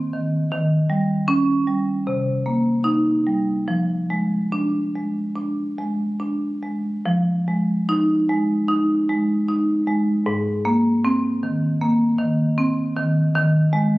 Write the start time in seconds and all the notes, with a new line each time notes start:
Already playing: C4
0.13 D#3
0.52 D#3
0.90 G3
1.28 C#4
1.68 G3
2.07 C3
2.46 A#3
2.84 D#4
3.27 G3
3.68 F3
4.10 G#3
4.52 D4
4.95 G#3
5.36 D4
5.78 G#3
6.20 D4
6.62 G#3
7.06 F3
7.48 G#3
7.89 D#4
8.29 G#3
8.68 D#4
9.09 G#3
9.49 D#4
9.87 G#3
10.26 G#2
10.65 A#3
11.05 C4
11.43 D#3
11.81 A#3
12.19 D#3
12.58 C4
12.97 D#3
13.35 D#3
13.73 G#3